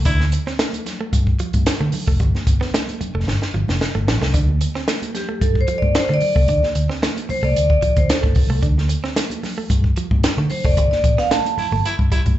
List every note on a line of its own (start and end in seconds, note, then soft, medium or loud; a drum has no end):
0.05 0.36 D2 loud
0.05 0.17 D4 medium
0.05 0.23 E4 loud
0.05 kick medium
0.05 closed hi-hat medium
0.20 snare soft
0.20 high conga medium
0.32 muted clean electric guitar stroke soft
0.32 closed hi-hat medium
0.47 0.57 C4 medium
0.47 snare soft
0.59 0.71 A3 medium
0.59 snare loud
0.59 closed hi-hat loud
0.59 muted conga soft
0.59 high conga medium
0.73 closed hi-hat medium
0.73 muted conga soft
0.73 high conga medium
0.86 muted clean electric guitar stroke soft
0.86 snare soft
0.86 closed hi-hat medium
0.86 low conga medium
1.01 1.11 A3 medium
1.13 1.33 G2 loud
1.13 kick loud
1.13 closed hi-hat medium
1.27 kick medium
1.39 1.51 F3 medium
1.39 closed hi-hat medium
1.53 1.63 G2 medium
1.53 kick medium
1.53 closed hi-hat soft
1.53 high conga medium
1.66 snare loud
1.66 closed hi-hat loud
1.80 1.90 D3 medium
1.80 1.91 A3 medium
1.80 muted conga soft
1.92 muted clean electric guitar stroke soft
1.92 open hi-hat medium
1.92 low conga medium
2.07 2.17 F1 medium
2.07 2.18 A3 medium
2.07 kick medium
2.20 2.31 G1 loud
2.20 2.32 G3 medium
2.20 kick loud
2.20 closed hi-hat medium
2.35 snare soft
2.35 high conga medium
2.47 2.57 G1 medium
2.47 muted clean electric guitar stroke soft
2.47 kick loud
2.47 closed hi-hat medium
2.61 2.71 B3 medium
2.61 snare soft
2.74 2.85 A3 medium
2.74 snare loud
2.74 closed hi-hat medium
2.74 muted conga soft
2.74 high conga medium
2.88 closed hi-hat soft
2.88 muted conga soft
2.88 high conga medium
3.01 muted clean electric guitar stroke soft
3.01 muted fingered electric bass stroke soft
3.01 closed hi-hat medium
3.01 low conga medium
3.15 3.24 F1 medium
3.15 3.25 A3 medium
3.27 3.38 G1 medium
3.27 snare medium
3.27 muted conga soft
3.42 snare medium
3.42 muted conga soft
3.54 3.65 G1 loud
3.54 3.66 F3 medium
3.68 3.77 F1 medium
3.68 snare medium
3.68 high conga medium
3.81 snare medium
3.81 muted conga soft
3.95 4.04 G1 medium
3.95 4.05 A3 medium
4.07 4.18 A1 medium
4.07 muted clean electric guitar stroke soft
4.07 snare loud
4.07 low conga medium
4.21 4.31 C2 loud
4.21 4.32 A3 medium
4.21 snare medium
4.34 4.64 D2 loud
4.34 4.46 D4 medium
4.34 kick loud
4.34 closed hi-hat medium
4.48 muted conga soft
4.48 high conga medium
4.61 muted clean electric guitar stroke soft
4.61 closed hi-hat medium
4.75 4.86 C4 medium
4.75 snare soft
4.88 4.99 A3 medium
4.88 snare loud
4.88 closed hi-hat medium
4.88 muted conga soft
4.88 high conga medium
5.02 closed hi-hat medium
5.02 muted conga soft
5.02 high conga medium
5.15 5.43 G4 medium
5.15 muted clean electric guitar stroke soft
5.15 snare soft
5.15 closed hi-hat medium
5.15 low conga medium
5.29 5.39 A3 medium
5.29 high conga medium
5.41 5.61 G2 medium
5.41 5.60 A4 medium
5.41 kick medium
5.41 closed hi-hat medium
5.41 muted conga soft
5.55 kick medium
5.55 muted conga soft
5.61 5.78 C5 medium
5.68 5.80 F3 medium
5.68 closed hi-hat medium
5.78 5.96 D5 loud
5.82 5.92 G2 medium
5.82 kick medium
5.82 high conga medium
5.95 6.14 C5 loud
5.95 snare loud
5.95 closed hi-hat medium
6.09 6.19 D3 loud
6.09 6.19 A3 medium
6.09 muted conga soft
6.14 6.63 D5 loud
6.20 muted clean electric guitar stroke soft
6.20 open hi-hat medium
6.20 low conga medium
6.36 6.45 C2 loud
6.36 6.46 A3 medium
6.36 kick medium
6.48 6.59 D2 loud
6.48 6.60 D4 medium
6.48 kick medium
6.48 closed hi-hat medium
6.48 muted conga soft
6.63 snare soft
6.63 muted conga soft
6.63 high conga medium
6.75 6.86 D2 medium
6.75 muted clean electric guitar stroke soft
6.75 closed hi-hat medium
6.89 7.00 C4 medium
6.89 snare soft
7.02 7.14 A3 medium
7.02 snare loud
7.02 closed hi-hat medium
7.02 high conga medium
7.17 closed hi-hat medium
7.17 muted conga soft
7.17 high conga medium
7.29 7.44 C5 medium
7.29 muted clean electric guitar stroke soft
7.29 muted fingered electric bass stroke soft
7.29 open hi-hat soft
7.29 low conga medium
7.43 7.52 C2 medium
7.43 7.53 A3 medium
7.43 7.69 D5 loud
7.43 high conga medium
7.55 7.75 D2 medium
7.55 closed hi-hat medium
7.70 7.98 D5 medium
7.70 kick medium
7.82 7.94 F3 medium
7.82 kick medium
7.82 closed hi-hat medium
7.96 8.06 D2 medium
7.96 8.10 C5 medium
7.96 kick medium
7.96 closed hi-hat soft
7.96 high conga medium
8.09 8.59 A4 medium
8.09 snare loud
8.09 closed hi-hat loud
8.09 muted conga soft
8.23 8.33 G1 medium
8.23 8.33 A3 medium
8.23 kick medium
8.35 8.46 B1 loud
8.35 muted clean electric guitar stroke soft
8.35 kick loud
8.35 open hi-hat medium
8.35 low conga medium
8.50 8.59 C2 medium
8.50 8.60 A3 medium
8.62 8.93 D2 loud
8.62 8.74 D4 medium
8.62 kick loud
8.62 closed hi-hat medium
8.77 snare soft
8.77 high conga medium
8.89 muted clean electric guitar stroke soft
8.89 closed hi-hat medium
9.04 9.14 C4 medium
9.04 snare soft
9.16 9.28 A3 medium
9.16 snare loud
9.16 closed hi-hat medium
9.16 high conga medium
9.30 closed hi-hat medium
9.30 muted conga soft
9.30 high conga medium
9.43 muted clean electric guitar stroke soft
9.43 snare soft
9.43 open hi-hat medium
9.43 low conga medium
9.58 9.68 A3 medium
9.58 high conga medium
9.70 9.90 G2 loud
9.70 kick medium
9.70 closed hi-hat medium
9.84 kick medium
9.96 10.09 F3 medium
9.96 closed hi-hat medium
10.11 10.20 G2 medium
10.11 kick medium
10.11 high conga medium
10.24 snare loud
10.24 closed hi-hat loud
10.24 muted conga soft
10.37 10.47 D3 loud
10.37 10.48 A3 medium
10.50 10.65 C5 medium
10.50 muted clean electric guitar stroke soft
10.50 open hi-hat medium
10.50 low conga medium
10.65 10.77 F1 medium
10.65 10.75 A3 medium
10.65 10.90 D5 medium
10.65 kick medium
10.77 10.88 G1 loud
10.77 10.89 G3 medium
10.77 kick loud
10.77 closed hi-hat medium
10.91 11.19 D5 medium
10.91 snare soft
10.91 high conga medium
11.04 11.14 A1 medium
11.04 muted clean electric guitar stroke soft
11.04 kick loud
11.04 closed hi-hat medium
11.18 11.29 B3 medium
11.18 11.31 F5 medium
11.18 snare soft
11.31 11.42 A3 medium
11.31 11.81 A5 loud
11.31 snare loud
11.31 closed hi-hat medium
11.31 muted conga soft
11.31 high conga medium
11.45 closed hi-hat medium
11.45 muted conga soft
11.45 high conga medium
11.57 11.67 E4 medium
11.57 muted fingered electric bass stroke medium
11.57 muted clean electric guitar stroke soft
11.57 open hi-hat soft
11.57 low conga medium
11.72 11.81 G1 medium
11.72 11.82 A3 medium
11.72 high conga medium
11.85 11.94 E4 loud
11.85 closed hi-hat loud
11.85 muted conga soft
11.99 12.08 G2 medium
11.99 kick medium
12.12 12.23 G3 medium
12.12 12.21 E4 loud
12.12 kick medium
12.12 closed hi-hat medium
12.26 12.35 G2 medium
12.26 kick medium
12.26 closed hi-hat soft
12.26 high conga medium